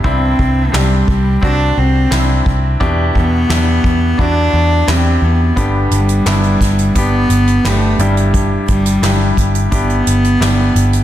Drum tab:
HH |----------------|----------------|x-xxxxxxx-xxx-xx|x-xxx-xxxxxxx-xx|
CP |----x-------x---|----x-------x---|----x-------x---|----x-------x---|
SD |----o-------o---|----o-------o---|----o-o-----o---|----o-------o---|
BD |o-o---o-o-----o-|o-o---o-o-------|o-----o-o-------|o-o---o-o-------|